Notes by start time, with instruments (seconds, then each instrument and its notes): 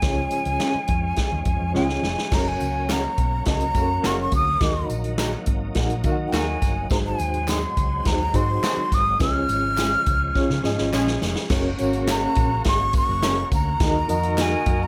Already playing: tonewheel organ G#3, flute G#5
0.02 fingered electric bass C#2, reed electric piano C#3 C#4 F4 G#4 C#5, tonewheel organ F3 C#4, kick, snare, closed hi-hat
0.31 closed hi-hat
0.45 fingered electric bass C#2, closed hi-hat
0.60 clean electric guitar G#3 C#4 F4 G#4, snare, closed hi-hat
0.74 muted fingered electric bass stroke
0.88 fingered electric bass F2, kick, closed hi-hat
1.16 kick, snare, closed hi-hat
1.32 fingered electric bass D#2
1.45 fingered electric bass F2, kick, closed hi-hat
1.61 fingered electric bass F2
1.73 fingered electric bass C#2, clean electric guitar G#3 C#4 F4 G#4, reed electric piano C#4 F4 G#4 C#5, flute G#5, snare
1.89 snare
2.03 fingered electric bass F1, snare
2.18 snare
2.31 fingered electric bass F#1, tonewheel organ F#3 A#3 C#4, reed electric piano C#4 F#4 A4 C#5, flute A#5, kick, snare, crash, tambourine
2.39 reed electric piano A#4
2.48 flute G#5
2.60 fingered electric bass C#2, closed hi-hat, tambourine
2.89 clean electric guitar A#3 C#4 F#4 A#4, flute A#5, snare, clap, closed hi-hat, tambourine
3.18 fingered electric bass B1, kick, closed hi-hat
3.45 fingered electric bass C#2, reed electric piano C#4 F#4 A#4 D#5, flute A#5, kick, snare, closed hi-hat
3.60 closed hi-hat
3.74 fingered electric bass F#2, horn section C#3 A#3 F#4, reed electric piano C#4 F#4 A4 C#5, kick, closed hi-hat, tambourine
3.82 reed electric piano A#4
4.03 fingered electric bass F#1, horn section C#3 A#3 F#4, clean electric guitar A#3 C#4 F#4 A#4, flute C#6, snare, clap, closed hi-hat, tambourine
4.21 flute C#6
4.32 fingered electric bass D2, flute D#6, kick, closed hi-hat, tambourine
4.61 fingered electric bass D#2, reed electric piano D#3 D#4 F#4 A#4 D#5, tonewheel organ D#4, kick, snare, closed hi-hat, tambourine
4.90 fingered electric bass A#1, closed hi-hat, tambourine
5.04 closed hi-hat
5.18 clean electric guitar A#3 D#4 F#4 A#4, snare, clap, closed hi-hat, tambourine
5.46 fingered electric bass G#1, kick, closed hi-hat
5.75 fingered electric bass A#1, reed electric piano D#4 F#4 A#4 F#5, kick, snare, closed hi-hat, tambourine
5.90 closed hi-hat
6.04 fingered electric bass D#3, horn section D#3 A#3 F#4, reed electric piano D#4 F#4 A#4 F5, kick, closed hi-hat, tambourine
6.12 reed electric piano F#5
6.28 flute G5
6.32 fingered electric bass D#2, horn section D#3 A#3 F#4, clean electric guitar A#3 D#4 F#4 A#4, flute G#5, snare, clap, closed hi-hat, tambourine
6.62 fingered electric bass G1, kick, snare, closed hi-hat, tambourine
6.90 fingered electric bass G#1, reed electric piano G#2 D#4 F#4 G#4 C5, tonewheel organ G#3 C4, flute A#5, kick, snare, closed hi-hat, tambourine
7.06 flute G#5
7.19 fingered electric bass D#2, closed hi-hat, tambourine
7.34 closed hi-hat
7.47 clean electric guitar F#3 C4 D#4 G#4, flute C6, snare, clap, closed hi-hat, tambourine
7.77 fingered electric bass C#2, kick, closed hi-hat, tambourine
8.04 fingered electric bass D#2, reed electric piano D#4 F#4 G#4 C5, flute A#5, kick, snare, closed hi-hat
8.33 fingered electric bass G#2, horn section D#3 C4 F#4, reed electric piano D#4 F#4 G#4 C5, flute C6, kick, closed hi-hat, tambourine
8.63 horn section D#3 C4 F#4, clean electric guitar F#3 C4 D#4 G#4, snare, clap, closed hi-hat, tambourine
8.77 muted fingered electric bass stroke
8.92 fingered electric bass G#1, flute D#6, kick, snare, closed hi-hat, tambourine
9.19 fingered electric bass C#2, reed electric piano C#3 C#4 F4 G#4 B4, tonewheel organ F3 C#4, flute F6, kick, snare, closed hi-hat, tambourine
9.28 reed electric piano C#5
9.49 fingered electric bass G#1, closed hi-hat, tambourine
9.78 clean electric guitar G#3 C#4 F4 G#4, snare, clap, closed hi-hat, tambourine
10.06 fingered electric bass C#2, kick, closed hi-hat, tambourine
10.35 reed electric piano C#4 F4 G#4 C#5, kick, snare, tambourine
10.50 fingered electric bass C#3, snare
10.64 fingered electric bass G#2, horn section F3 C#4 G#4, reed electric piano C#4 F4 G#4 D#5, snare, tambourine
10.78 fingered electric bass G#1, snare
10.92 fingered electric bass A#1, horn section F3 C#4 G#4, clean electric guitar G#3 C#4 F4 G#4, snare, clap, tambourine
11.07 snare
11.22 fingered electric bass F1, snare, tambourine
11.35 snare
11.50 fingered electric bass F#1, horn section C#3 A#3 F#4, tonewheel organ A#3 C#4 F#4, reed electric piano C#4 F#4 A#4 C#5, kick, snare, crash, tambourine
11.78 fingered electric bass G#1, reed electric piano C#4 F#4 A#4 C#5, closed hi-hat, tambourine
11.93 closed hi-hat
12.07 clean electric guitar A#3 C#4 F#4 A#4, flute A#5, snare, clap, closed hi-hat, tambourine
12.35 fingered electric bass A#1, kick, closed hi-hat, tambourine
12.64 fingered electric bass G#1, flute C#6, kick, snare, closed hi-hat
12.93 kick, closed hi-hat, tambourine
12.97 flute C#6
13.09 fingered electric bass F#1
13.23 clean electric guitar A#3 C#4 F#4 A#4, snare, clap, closed hi-hat, tambourine
13.52 fingered electric bass D2, flute A#5, kick, closed hi-hat, tambourine
13.80 fingered electric bass D#2, reed electric piano D#3 D#4 F#4 A#4 D#5, horn section D#4 F#4 A#4, tonewheel organ D#4, kick, snare, closed hi-hat, tambourine
14.08 fingered electric bass F2, reed electric piano D#4 F#4 A#4 D#5, closed hi-hat, tambourine
14.23 closed hi-hat
14.38 clean electric guitar A#3 D#4 F#4 A#4, flute G#5, snare, clap, closed hi-hat, tambourine
14.66 fingered electric bass F#2, kick, closed hi-hat, tambourine
14.83 flute A#5